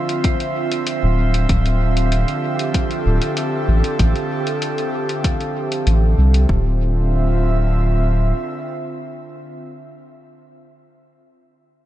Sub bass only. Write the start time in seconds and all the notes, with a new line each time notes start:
1.03 D1
1.49 D1
3.06 D1
3.68 A1
3.99 A1
5.87 A1
6.18 C2
6.49 D1